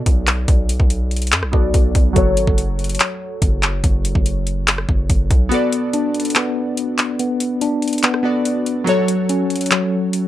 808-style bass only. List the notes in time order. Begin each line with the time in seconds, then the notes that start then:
0.06 B1
0.48 B1
0.80 B1
1.32 F#2
1.43 B1
1.53 B1
1.74 B1
1.95 B1
2.16 F#1
2.37 G#1
2.47 F#1
3.42 F#1
3.84 F#1
4.15 F#1
4.89 F#1
5.10 F#1
5.31 B1